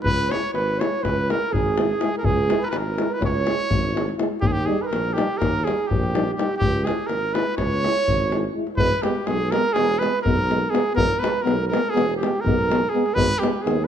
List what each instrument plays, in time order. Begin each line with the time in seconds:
0.04 tuba C#2, trumpet B4, flugelhorn B4, davul low
0.29 euphonium G#3 E4, flugelhorn C#5, trumpet C#5, davul high
0.53 tuba G#1, flugelhorn B4, trumpet B4, davul high
0.69 davul high
0.78 euphonium G#3 E4, flugelhorn C#5, trumpet C#5, davul high
1.02 tuba C#2, flugelhorn B4, trumpet B4, davul high, davul low
1.18 davul high
1.28 euphonium G#3 E4, flugelhorn A#4, trumpet A#4, davul high
1.52 tuba G#1, flugelhorn G#4, trumpet G#4, davul low
1.66 davul high
1.77 euphonium G#3 E4, davul high
1.89 davul high
2.00 euphonium G#3 E4, davul high
2.16 flugelhorn A#4, trumpet A#4
2.21 tuba C#2, flugelhorn G#4, davul low
2.25 trumpet G#4
2.48 euphonium G#3 E4, davul high
2.59 flugelhorn A#4 B4
2.63 trumpet A#4 B4, flugelhorn B4
2.70 tuba G#1, flugelhorn A#4, trumpet B4, davul high
2.74 trumpet A#4
2.86 davul high
2.97 euphonium G#3 E4, davul high
3.09 flugelhorn B4, trumpet B4
3.20 tuba C#2, flugelhorn C#5, davul high, davul low
3.26 trumpet C#5
3.35 davul high
3.44 euphonium G#3 E4, davul high
3.71 tuba G#1, davul low
3.84 davul high
3.92 euphonium G#3 E4
3.97 davul high
4.09 davul high
4.16 euphonium G#3 E4, davul high
4.41 tuba D#2, trumpet G4, flugelhorn G4, davul low
4.47 trumpet G#4, flugelhorn G#4
4.52 flugelhorn G4, trumpet G4
4.66 euphonium G3 D#4, trumpet G#4, flugelhorn G#4
4.82 trumpet B4, flugelhorn B4
4.87 trumpet A#4
4.91 tuba A#1, flugelhorn A#4, davul high
5.05 davul high
5.13 euphonium D#4, trumpet G4
5.17 euphonium G3, flugelhorn G4, davul high
5.37 trumpet A#4, flugelhorn A#4
5.41 tuba D#2, davul high, davul low
5.56 davul high
5.64 euphonium G3 D#4, trumpet G#4, flugelhorn G#4, davul high
5.87 trumpet G4, flugelhorn G4
5.91 tuba A#1, davul low
6.03 davul high
6.14 euphonium G3 D#4, davul high
6.28 davul high
6.34 euphonium G3, trumpet G4, flugelhorn G4
6.39 euphonium D#4, davul high
6.57 trumpet G4, flugelhorn G4
6.61 tuba C#2, davul low
6.84 euphonium G#3, trumpet G#4, flugelhorn G#4, davul high
6.88 euphonium E4
7.07 tuba G#1, trumpet A#4, flugelhorn A#4, davul high
7.22 davul high
7.34 euphonium G#3 E4, trumpet B4, flugelhorn B4, davul high
7.46 davul high
7.57 tuba C#2, flugelhorn C#5, trumpet C#5, davul high, davul low
7.72 davul high
7.83 euphonium G#3 E4, davul high
7.97 davul high
8.08 tuba G#1, davul low
8.21 davul high
8.31 euphonium G#3 E4, davul high
8.44 davul high
8.54 euphonium G#3 E4
8.67 davul high
8.76 tuba E1, euphonium G#3 B3, flugelhorn B4, trumpet B4, davul low
9.03 euphonium G#3 B3, trumpet G4, flugelhorn G4, davul high
9.25 tuba B1, euphonium G#3 B3, flugelhorn G#4, trumpet G#4, davul high
9.51 euphonium G#3 B3, trumpet A#4, flugelhorn A#4, davul high
9.73 tuba E1, euphonium G#3, flugelhorn G#4, trumpet G#4, davul high
9.78 euphonium B3
9.89 davul high
9.99 euphonium G#3, trumpet B4, flugelhorn B4, davul high
10.03 euphonium B3
10.14 davul high
10.22 tuba B1, euphonium G#3 B3, trumpet A#4, flugelhorn A#4, davul low
10.38 davul high
10.49 euphonium G#3 B3, davul high
10.70 euphonium G#3 B3, trumpet G#4, flugelhorn G#4
10.75 davul high
10.94 tuba E1, euphonium G#3 B3, trumpet A#4, flugelhorn A#4, davul low
11.18 euphonium G#3 B3, trumpet B4, flugelhorn B4
11.24 davul high
11.42 tuba B1, euphonium G#3 B3, trumpet A#4, flugelhorn A#4
11.47 davul high
11.68 euphonium G#3 B3, trumpet A#4, flugelhorn A#4
11.73 davul high
11.90 euphonium B3, trumpet G#4, flugelhorn G#4
11.94 tuba E1, euphonium G#3, davul high
12.10 davul high
12.16 trumpet G4, flugelhorn G4
12.21 euphonium G#3 B3, davul high
12.35 davul high
12.40 tuba B1, trumpet A#4, flugelhorn A#4
12.45 euphonium G#3 B3, davul low
12.59 davul high
12.69 euphonium G#3 B3, davul high
12.89 trumpet G#4, flugelhorn G#4
12.94 euphonium G#3 B3
13.06 davul high
13.14 tuba G#1, euphonium G#3 B3, flugelhorn B4, trumpet B4, davul low
13.39 euphonium G#3 B3, trumpet G4, flugelhorn G4
13.43 davul high
13.62 euphonium B3, trumpet G#4, flugelhorn G#4
13.66 tuba D#2, euphonium G#3, davul high